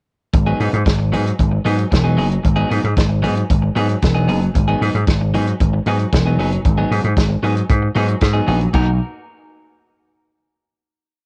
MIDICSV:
0, 0, Header, 1, 5, 480
1, 0, Start_track
1, 0, Tempo, 524934
1, 310, Time_signature, 4, 2, 24, 8
1, 10289, End_track
2, 0, Start_track
2, 0, Title_t, "Clean electric guitar"
2, 0, Program_c, 0, 27
2, 425, Note_on_c, 0, 68, 70
2, 428, Note_on_c, 0, 63, 67
2, 432, Note_on_c, 0, 59, 70
2, 435, Note_on_c, 0, 54, 66
2, 534, Note_off_c, 0, 54, 0
2, 539, Note_off_c, 0, 59, 0
2, 540, Note_off_c, 0, 63, 0
2, 544, Note_off_c, 0, 68, 0
2, 545, Note_on_c, 0, 54, 52
2, 550, Note_on_c, 0, 59, 51
2, 551, Note_on_c, 0, 63, 55
2, 555, Note_on_c, 0, 68, 58
2, 647, Note_off_c, 0, 68, 0
2, 651, Note_off_c, 0, 63, 0
2, 657, Note_off_c, 0, 59, 0
2, 702, Note_off_c, 0, 54, 0
2, 1026, Note_on_c, 0, 54, 67
2, 1030, Note_on_c, 0, 59, 76
2, 1035, Note_on_c, 0, 63, 85
2, 1040, Note_on_c, 0, 68, 81
2, 1141, Note_off_c, 0, 68, 0
2, 1145, Note_off_c, 0, 63, 0
2, 1150, Note_off_c, 0, 59, 0
2, 1223, Note_off_c, 0, 54, 0
2, 1506, Note_on_c, 0, 54, 92
2, 1511, Note_on_c, 0, 59, 92
2, 1513, Note_on_c, 0, 63, 95
2, 1516, Note_on_c, 0, 68, 89
2, 1617, Note_off_c, 0, 68, 0
2, 1620, Note_off_c, 0, 63, 0
2, 1623, Note_off_c, 0, 59, 0
2, 1704, Note_off_c, 0, 54, 0
2, 1862, Note_on_c, 0, 68, 64
2, 1868, Note_on_c, 0, 63, 56
2, 1870, Note_on_c, 0, 59, 51
2, 1876, Note_on_c, 0, 54, 54
2, 1971, Note_off_c, 0, 54, 0
2, 1977, Note_off_c, 0, 59, 0
2, 1982, Note_on_c, 0, 54, 91
2, 1983, Note_off_c, 0, 63, 0
2, 1985, Note_off_c, 0, 68, 0
2, 1988, Note_on_c, 0, 59, 88
2, 1993, Note_on_c, 0, 63, 101
2, 1996, Note_on_c, 0, 68, 102
2, 2091, Note_off_c, 0, 68, 0
2, 2094, Note_off_c, 0, 63, 0
2, 2096, Note_off_c, 0, 59, 0
2, 2183, Note_off_c, 0, 54, 0
2, 2340, Note_on_c, 0, 68, 92
2, 2344, Note_on_c, 0, 63, 96
2, 2347, Note_on_c, 0, 59, 77
2, 2352, Note_on_c, 0, 54, 68
2, 2451, Note_off_c, 0, 54, 0
2, 2454, Note_off_c, 0, 59, 0
2, 2459, Note_off_c, 0, 63, 0
2, 2462, Note_off_c, 0, 68, 0
2, 2462, Note_on_c, 0, 54, 64
2, 2465, Note_on_c, 0, 59, 61
2, 2470, Note_on_c, 0, 63, 69
2, 2473, Note_on_c, 0, 68, 58
2, 2578, Note_off_c, 0, 68, 0
2, 2582, Note_off_c, 0, 63, 0
2, 2588, Note_off_c, 0, 59, 0
2, 2625, Note_off_c, 0, 54, 0
2, 2947, Note_on_c, 0, 54, 87
2, 2953, Note_on_c, 0, 59, 93
2, 2956, Note_on_c, 0, 63, 85
2, 2959, Note_on_c, 0, 68, 83
2, 3058, Note_off_c, 0, 68, 0
2, 3065, Note_off_c, 0, 63, 0
2, 3071, Note_off_c, 0, 59, 0
2, 3147, Note_off_c, 0, 54, 0
2, 3432, Note_on_c, 0, 54, 77
2, 3438, Note_on_c, 0, 59, 86
2, 3443, Note_on_c, 0, 63, 80
2, 3443, Note_on_c, 0, 68, 93
2, 3541, Note_off_c, 0, 68, 0
2, 3546, Note_off_c, 0, 63, 0
2, 3553, Note_off_c, 0, 59, 0
2, 3629, Note_off_c, 0, 54, 0
2, 3790, Note_on_c, 0, 68, 69
2, 3795, Note_on_c, 0, 63, 59
2, 3799, Note_on_c, 0, 59, 65
2, 3802, Note_on_c, 0, 54, 54
2, 3898, Note_off_c, 0, 54, 0
2, 3900, Note_off_c, 0, 59, 0
2, 3907, Note_off_c, 0, 63, 0
2, 3909, Note_off_c, 0, 68, 0
2, 3909, Note_on_c, 0, 54, 87
2, 3911, Note_on_c, 0, 59, 87
2, 3917, Note_on_c, 0, 63, 107
2, 3920, Note_on_c, 0, 68, 98
2, 4023, Note_off_c, 0, 68, 0
2, 4025, Note_off_c, 0, 63, 0
2, 4032, Note_off_c, 0, 59, 0
2, 4108, Note_off_c, 0, 54, 0
2, 4277, Note_on_c, 0, 68, 98
2, 4285, Note_on_c, 0, 63, 86
2, 4289, Note_on_c, 0, 59, 85
2, 4293, Note_on_c, 0, 54, 76
2, 4390, Note_off_c, 0, 54, 0
2, 4392, Note_off_c, 0, 59, 0
2, 4397, Note_off_c, 0, 63, 0
2, 4401, Note_on_c, 0, 54, 57
2, 4403, Note_off_c, 0, 68, 0
2, 4403, Note_on_c, 0, 59, 53
2, 4408, Note_on_c, 0, 63, 57
2, 4414, Note_on_c, 0, 68, 65
2, 4512, Note_off_c, 0, 68, 0
2, 4515, Note_off_c, 0, 63, 0
2, 4519, Note_off_c, 0, 59, 0
2, 4555, Note_off_c, 0, 54, 0
2, 4882, Note_on_c, 0, 54, 89
2, 4886, Note_on_c, 0, 59, 80
2, 4889, Note_on_c, 0, 63, 92
2, 4893, Note_on_c, 0, 68, 86
2, 4994, Note_off_c, 0, 68, 0
2, 4998, Note_off_c, 0, 63, 0
2, 5003, Note_off_c, 0, 59, 0
2, 5074, Note_off_c, 0, 54, 0
2, 5366, Note_on_c, 0, 54, 79
2, 5370, Note_on_c, 0, 59, 84
2, 5372, Note_on_c, 0, 63, 89
2, 5376, Note_on_c, 0, 68, 90
2, 5469, Note_off_c, 0, 63, 0
2, 5469, Note_off_c, 0, 68, 0
2, 5476, Note_off_c, 0, 59, 0
2, 5556, Note_off_c, 0, 54, 0
2, 5720, Note_on_c, 0, 68, 55
2, 5729, Note_on_c, 0, 63, 58
2, 5730, Note_on_c, 0, 59, 55
2, 5736, Note_on_c, 0, 54, 54
2, 5832, Note_off_c, 0, 54, 0
2, 5838, Note_off_c, 0, 59, 0
2, 5841, Note_off_c, 0, 63, 0
2, 5843, Note_on_c, 0, 54, 86
2, 5845, Note_off_c, 0, 68, 0
2, 5849, Note_on_c, 0, 59, 89
2, 5852, Note_on_c, 0, 63, 81
2, 5856, Note_on_c, 0, 68, 102
2, 5950, Note_off_c, 0, 68, 0
2, 5956, Note_off_c, 0, 63, 0
2, 5960, Note_off_c, 0, 59, 0
2, 6033, Note_off_c, 0, 54, 0
2, 6197, Note_on_c, 0, 63, 86
2, 6197, Note_on_c, 0, 68, 80
2, 6202, Note_on_c, 0, 59, 82
2, 6205, Note_on_c, 0, 54, 84
2, 6303, Note_off_c, 0, 54, 0
2, 6311, Note_off_c, 0, 59, 0
2, 6313, Note_off_c, 0, 63, 0
2, 6314, Note_on_c, 0, 54, 61
2, 6318, Note_off_c, 0, 68, 0
2, 6322, Note_on_c, 0, 59, 59
2, 6324, Note_on_c, 0, 63, 67
2, 6329, Note_on_c, 0, 68, 67
2, 6420, Note_off_c, 0, 68, 0
2, 6426, Note_off_c, 0, 63, 0
2, 6428, Note_off_c, 0, 59, 0
2, 6470, Note_off_c, 0, 54, 0
2, 6792, Note_on_c, 0, 54, 77
2, 6796, Note_on_c, 0, 59, 72
2, 6802, Note_on_c, 0, 63, 86
2, 6806, Note_on_c, 0, 68, 78
2, 6903, Note_off_c, 0, 68, 0
2, 6910, Note_off_c, 0, 63, 0
2, 6915, Note_off_c, 0, 59, 0
2, 6987, Note_off_c, 0, 54, 0
2, 7271, Note_on_c, 0, 54, 81
2, 7277, Note_on_c, 0, 59, 83
2, 7279, Note_on_c, 0, 63, 84
2, 7285, Note_on_c, 0, 68, 99
2, 7380, Note_off_c, 0, 68, 0
2, 7386, Note_off_c, 0, 63, 0
2, 7389, Note_off_c, 0, 59, 0
2, 7465, Note_off_c, 0, 54, 0
2, 7621, Note_on_c, 0, 68, 66
2, 7626, Note_on_c, 0, 63, 57
2, 7630, Note_on_c, 0, 59, 53
2, 7636, Note_on_c, 0, 54, 47
2, 7732, Note_off_c, 0, 54, 0
2, 7738, Note_off_c, 0, 59, 0
2, 7742, Note_off_c, 0, 63, 0
2, 7743, Note_on_c, 0, 54, 81
2, 7744, Note_off_c, 0, 68, 0
2, 7749, Note_on_c, 0, 59, 91
2, 7753, Note_on_c, 0, 63, 92
2, 7755, Note_on_c, 0, 68, 97
2, 7858, Note_off_c, 0, 68, 0
2, 7861, Note_off_c, 0, 63, 0
2, 7868, Note_off_c, 0, 59, 0
2, 7940, Note_off_c, 0, 54, 0
2, 7985, Note_on_c, 0, 58, 75
2, 7992, Note_on_c, 0, 63, 91
2, 7996, Note_on_c, 0, 66, 84
2, 8002, Note_on_c, 0, 70, 97
2, 8134, Note_off_c, 0, 58, 0
2, 8137, Note_off_c, 0, 63, 0
2, 8139, Note_off_c, 0, 66, 0
2, 8142, Note_off_c, 0, 70, 0
2, 10289, End_track
3, 0, Start_track
3, 0, Title_t, "Slap bass"
3, 0, Program_c, 1, 36
3, 308, Note_on_c, 1, 32, 101
3, 472, Note_off_c, 1, 32, 0
3, 549, Note_on_c, 1, 44, 90
3, 631, Note_off_c, 1, 44, 0
3, 669, Note_on_c, 1, 44, 90
3, 752, Note_off_c, 1, 44, 0
3, 787, Note_on_c, 1, 32, 94
3, 1030, Note_on_c, 1, 44, 92
3, 1043, Note_off_c, 1, 32, 0
3, 1195, Note_off_c, 1, 44, 0
3, 1275, Note_on_c, 1, 32, 99
3, 1439, Note_off_c, 1, 32, 0
3, 1511, Note_on_c, 1, 44, 93
3, 1676, Note_off_c, 1, 44, 0
3, 1754, Note_on_c, 1, 28, 83
3, 1994, Note_off_c, 1, 28, 0
3, 1994, Note_on_c, 1, 30, 92
3, 2159, Note_off_c, 1, 30, 0
3, 2238, Note_on_c, 1, 32, 106
3, 2402, Note_off_c, 1, 32, 0
3, 2477, Note_on_c, 1, 44, 95
3, 2559, Note_off_c, 1, 44, 0
3, 2596, Note_on_c, 1, 44, 82
3, 2679, Note_off_c, 1, 44, 0
3, 2715, Note_on_c, 1, 32, 103
3, 2959, Note_on_c, 1, 44, 91
3, 2972, Note_off_c, 1, 32, 0
3, 3123, Note_off_c, 1, 44, 0
3, 3200, Note_on_c, 1, 32, 106
3, 3364, Note_off_c, 1, 32, 0
3, 3438, Note_on_c, 1, 44, 91
3, 3602, Note_off_c, 1, 44, 0
3, 3681, Note_on_c, 1, 28, 84
3, 3919, Note_off_c, 1, 28, 0
3, 3919, Note_on_c, 1, 30, 88
3, 4084, Note_off_c, 1, 30, 0
3, 4162, Note_on_c, 1, 32, 102
3, 4325, Note_off_c, 1, 32, 0
3, 4400, Note_on_c, 1, 44, 98
3, 4482, Note_off_c, 1, 44, 0
3, 4519, Note_on_c, 1, 44, 79
3, 4602, Note_off_c, 1, 44, 0
3, 4638, Note_on_c, 1, 32, 91
3, 4880, Note_on_c, 1, 44, 93
3, 4894, Note_off_c, 1, 32, 0
3, 5044, Note_off_c, 1, 44, 0
3, 5124, Note_on_c, 1, 32, 111
3, 5286, Note_off_c, 1, 32, 0
3, 5359, Note_on_c, 1, 44, 88
3, 5523, Note_off_c, 1, 44, 0
3, 5603, Note_on_c, 1, 28, 86
3, 5839, Note_off_c, 1, 28, 0
3, 5839, Note_on_c, 1, 30, 100
3, 6002, Note_off_c, 1, 30, 0
3, 6080, Note_on_c, 1, 32, 105
3, 6242, Note_off_c, 1, 32, 0
3, 6318, Note_on_c, 1, 44, 98
3, 6400, Note_off_c, 1, 44, 0
3, 6438, Note_on_c, 1, 44, 92
3, 6520, Note_off_c, 1, 44, 0
3, 6556, Note_on_c, 1, 32, 110
3, 6720, Note_off_c, 1, 32, 0
3, 6793, Note_on_c, 1, 44, 86
3, 6957, Note_off_c, 1, 44, 0
3, 7037, Note_on_c, 1, 44, 97
3, 7200, Note_off_c, 1, 44, 0
3, 7276, Note_on_c, 1, 44, 91
3, 7439, Note_off_c, 1, 44, 0
3, 7513, Note_on_c, 1, 44, 80
3, 7676, Note_off_c, 1, 44, 0
3, 7753, Note_on_c, 1, 34, 88
3, 7916, Note_off_c, 1, 34, 0
3, 7993, Note_on_c, 1, 35, 86
3, 8216, Note_off_c, 1, 35, 0
3, 10289, End_track
4, 0, Start_track
4, 0, Title_t, "Muted clean electric guitar strokes"
4, 306, Note_on_c, 9, 29, 49
4, 397, Note_off_c, 9, 29, 0
4, 658, Note_on_c, 9, 29, 47
4, 750, Note_off_c, 9, 29, 0
4, 782, Note_on_c, 9, 29, 35
4, 873, Note_off_c, 9, 29, 0
4, 903, Note_on_c, 9, 29, 46
4, 994, Note_off_c, 9, 29, 0
4, 1152, Note_on_c, 9, 29, 49
4, 1243, Note_off_c, 9, 29, 0
4, 1272, Note_on_c, 9, 29, 38
4, 1363, Note_off_c, 9, 29, 0
4, 1385, Note_on_c, 9, 29, 40
4, 1477, Note_off_c, 9, 29, 0
4, 1628, Note_on_c, 9, 29, 45
4, 1720, Note_off_c, 9, 29, 0
4, 1741, Note_on_c, 9, 29, 47
4, 1832, Note_off_c, 9, 29, 0
4, 2102, Note_on_c, 9, 29, 49
4, 2193, Note_off_c, 9, 29, 0
4, 2221, Note_on_c, 9, 29, 37
4, 2313, Note_off_c, 9, 29, 0
4, 2589, Note_on_c, 9, 29, 43
4, 2680, Note_off_c, 9, 29, 0
4, 2713, Note_on_c, 9, 29, 42
4, 2804, Note_off_c, 9, 29, 0
4, 2829, Note_on_c, 9, 29, 45
4, 2920, Note_off_c, 9, 29, 0
4, 3069, Note_on_c, 9, 29, 45
4, 3160, Note_off_c, 9, 29, 0
4, 3312, Note_on_c, 9, 29, 38
4, 3404, Note_off_c, 9, 29, 0
4, 3552, Note_on_c, 9, 29, 48
4, 3644, Note_off_c, 9, 29, 0
4, 3676, Note_on_c, 9, 29, 42
4, 3767, Note_off_c, 9, 29, 0
4, 4034, Note_on_c, 9, 29, 49
4, 4126, Note_off_c, 9, 29, 0
4, 4152, Note_on_c, 9, 29, 38
4, 4244, Note_off_c, 9, 29, 0
4, 4523, Note_on_c, 9, 29, 46
4, 4614, Note_off_c, 9, 29, 0
4, 4641, Note_on_c, 9, 29, 41
4, 4733, Note_off_c, 9, 29, 0
4, 4766, Note_on_c, 9, 29, 46
4, 4858, Note_off_c, 9, 29, 0
4, 5005, Note_on_c, 9, 29, 56
4, 5097, Note_off_c, 9, 29, 0
4, 5124, Note_on_c, 9, 29, 42
4, 5216, Note_off_c, 9, 29, 0
4, 5243, Note_on_c, 9, 29, 47
4, 5334, Note_off_c, 9, 29, 0
4, 5480, Note_on_c, 9, 29, 54
4, 5571, Note_off_c, 9, 29, 0
4, 5602, Note_on_c, 9, 29, 30
4, 5693, Note_off_c, 9, 29, 0
4, 5961, Note_on_c, 9, 29, 39
4, 6052, Note_off_c, 9, 29, 0
4, 6080, Note_on_c, 9, 29, 41
4, 6172, Note_off_c, 9, 29, 0
4, 6431, Note_on_c, 9, 29, 42
4, 6522, Note_off_c, 9, 29, 0
4, 6555, Note_on_c, 9, 29, 38
4, 6646, Note_off_c, 9, 29, 0
4, 6674, Note_on_c, 9, 29, 45
4, 6766, Note_off_c, 9, 29, 0
4, 6914, Note_on_c, 9, 29, 41
4, 7005, Note_off_c, 9, 29, 0
4, 7155, Note_on_c, 9, 29, 45
4, 7247, Note_off_c, 9, 29, 0
4, 7391, Note_on_c, 9, 29, 55
4, 7482, Note_off_c, 9, 29, 0
4, 7506, Note_on_c, 9, 29, 34
4, 7598, Note_off_c, 9, 29, 0
4, 7869, Note_on_c, 9, 29, 40
4, 7960, Note_off_c, 9, 29, 0
4, 10289, End_track
5, 0, Start_track
5, 0, Title_t, "Drums"
5, 307, Note_on_c, 9, 36, 120
5, 310, Note_on_c, 9, 42, 61
5, 399, Note_off_c, 9, 36, 0
5, 401, Note_off_c, 9, 42, 0
5, 551, Note_on_c, 9, 46, 62
5, 642, Note_off_c, 9, 46, 0
5, 672, Note_on_c, 9, 42, 47
5, 764, Note_off_c, 9, 42, 0
5, 787, Note_on_c, 9, 36, 111
5, 793, Note_on_c, 9, 42, 67
5, 803, Note_on_c, 9, 38, 102
5, 879, Note_off_c, 9, 36, 0
5, 884, Note_off_c, 9, 42, 0
5, 894, Note_off_c, 9, 38, 0
5, 1037, Note_on_c, 9, 46, 62
5, 1128, Note_off_c, 9, 46, 0
5, 1158, Note_on_c, 9, 42, 46
5, 1250, Note_off_c, 9, 42, 0
5, 1274, Note_on_c, 9, 36, 99
5, 1279, Note_on_c, 9, 42, 60
5, 1365, Note_off_c, 9, 36, 0
5, 1370, Note_off_c, 9, 42, 0
5, 1514, Note_on_c, 9, 46, 67
5, 1605, Note_off_c, 9, 46, 0
5, 1633, Note_on_c, 9, 42, 46
5, 1724, Note_off_c, 9, 42, 0
5, 1755, Note_on_c, 9, 36, 107
5, 1756, Note_on_c, 9, 42, 51
5, 1772, Note_on_c, 9, 38, 111
5, 1846, Note_off_c, 9, 36, 0
5, 1847, Note_off_c, 9, 42, 0
5, 1863, Note_off_c, 9, 38, 0
5, 2000, Note_on_c, 9, 46, 74
5, 2091, Note_off_c, 9, 46, 0
5, 2118, Note_on_c, 9, 42, 43
5, 2210, Note_off_c, 9, 42, 0
5, 2237, Note_on_c, 9, 36, 111
5, 2240, Note_on_c, 9, 42, 63
5, 2328, Note_off_c, 9, 36, 0
5, 2332, Note_off_c, 9, 42, 0
5, 2479, Note_on_c, 9, 46, 58
5, 2570, Note_off_c, 9, 46, 0
5, 2601, Note_on_c, 9, 42, 51
5, 2692, Note_off_c, 9, 42, 0
5, 2715, Note_on_c, 9, 36, 114
5, 2719, Note_on_c, 9, 42, 65
5, 2729, Note_on_c, 9, 38, 97
5, 2806, Note_off_c, 9, 36, 0
5, 2810, Note_off_c, 9, 42, 0
5, 2820, Note_off_c, 9, 38, 0
5, 2958, Note_on_c, 9, 46, 64
5, 3049, Note_off_c, 9, 46, 0
5, 3081, Note_on_c, 9, 42, 51
5, 3173, Note_off_c, 9, 42, 0
5, 3199, Note_on_c, 9, 42, 68
5, 3200, Note_on_c, 9, 36, 112
5, 3291, Note_off_c, 9, 36, 0
5, 3291, Note_off_c, 9, 42, 0
5, 3437, Note_on_c, 9, 46, 65
5, 3528, Note_off_c, 9, 46, 0
5, 3554, Note_on_c, 9, 42, 44
5, 3646, Note_off_c, 9, 42, 0
5, 3675, Note_on_c, 9, 42, 56
5, 3680, Note_on_c, 9, 36, 116
5, 3692, Note_on_c, 9, 38, 107
5, 3767, Note_off_c, 9, 42, 0
5, 3772, Note_off_c, 9, 36, 0
5, 3783, Note_off_c, 9, 38, 0
5, 3918, Note_on_c, 9, 46, 69
5, 4009, Note_off_c, 9, 46, 0
5, 4040, Note_on_c, 9, 42, 37
5, 4132, Note_off_c, 9, 42, 0
5, 4162, Note_on_c, 9, 36, 115
5, 4162, Note_on_c, 9, 42, 65
5, 4253, Note_off_c, 9, 36, 0
5, 4253, Note_off_c, 9, 42, 0
5, 4407, Note_on_c, 9, 46, 63
5, 4498, Note_off_c, 9, 46, 0
5, 4526, Note_on_c, 9, 42, 52
5, 4617, Note_off_c, 9, 42, 0
5, 4639, Note_on_c, 9, 36, 112
5, 4639, Note_on_c, 9, 42, 65
5, 4649, Note_on_c, 9, 38, 98
5, 4730, Note_off_c, 9, 36, 0
5, 4730, Note_off_c, 9, 42, 0
5, 4740, Note_off_c, 9, 38, 0
5, 4884, Note_on_c, 9, 46, 68
5, 4975, Note_off_c, 9, 46, 0
5, 5004, Note_on_c, 9, 42, 46
5, 5095, Note_off_c, 9, 42, 0
5, 5124, Note_on_c, 9, 36, 109
5, 5125, Note_on_c, 9, 42, 69
5, 5215, Note_off_c, 9, 36, 0
5, 5216, Note_off_c, 9, 42, 0
5, 5358, Note_on_c, 9, 46, 65
5, 5449, Note_off_c, 9, 46, 0
5, 5479, Note_on_c, 9, 42, 43
5, 5570, Note_off_c, 9, 42, 0
5, 5602, Note_on_c, 9, 36, 110
5, 5602, Note_on_c, 9, 42, 55
5, 5618, Note_on_c, 9, 38, 115
5, 5693, Note_off_c, 9, 42, 0
5, 5694, Note_off_c, 9, 36, 0
5, 5709, Note_off_c, 9, 38, 0
5, 5845, Note_on_c, 9, 46, 72
5, 5937, Note_off_c, 9, 46, 0
5, 5965, Note_on_c, 9, 42, 45
5, 6057, Note_off_c, 9, 42, 0
5, 6081, Note_on_c, 9, 36, 116
5, 6084, Note_on_c, 9, 42, 58
5, 6172, Note_off_c, 9, 36, 0
5, 6176, Note_off_c, 9, 42, 0
5, 6327, Note_on_c, 9, 46, 59
5, 6418, Note_off_c, 9, 46, 0
5, 6441, Note_on_c, 9, 42, 47
5, 6532, Note_off_c, 9, 42, 0
5, 6556, Note_on_c, 9, 36, 117
5, 6559, Note_on_c, 9, 42, 68
5, 6569, Note_on_c, 9, 38, 107
5, 6647, Note_off_c, 9, 36, 0
5, 6651, Note_off_c, 9, 42, 0
5, 6660, Note_off_c, 9, 38, 0
5, 6801, Note_on_c, 9, 46, 57
5, 6892, Note_off_c, 9, 46, 0
5, 6920, Note_on_c, 9, 42, 52
5, 7011, Note_off_c, 9, 42, 0
5, 7038, Note_on_c, 9, 36, 113
5, 7042, Note_on_c, 9, 42, 64
5, 7129, Note_off_c, 9, 36, 0
5, 7133, Note_off_c, 9, 42, 0
5, 7272, Note_on_c, 9, 46, 71
5, 7363, Note_off_c, 9, 46, 0
5, 7392, Note_on_c, 9, 42, 47
5, 7483, Note_off_c, 9, 42, 0
5, 7507, Note_on_c, 9, 42, 54
5, 7513, Note_on_c, 9, 36, 102
5, 7523, Note_on_c, 9, 38, 110
5, 7598, Note_off_c, 9, 42, 0
5, 7604, Note_off_c, 9, 36, 0
5, 7615, Note_off_c, 9, 38, 0
5, 7751, Note_on_c, 9, 46, 70
5, 7842, Note_off_c, 9, 46, 0
5, 7874, Note_on_c, 9, 42, 38
5, 7965, Note_off_c, 9, 42, 0
5, 7989, Note_on_c, 9, 49, 81
5, 7992, Note_on_c, 9, 36, 109
5, 8081, Note_off_c, 9, 49, 0
5, 8083, Note_off_c, 9, 36, 0
5, 10289, End_track
0, 0, End_of_file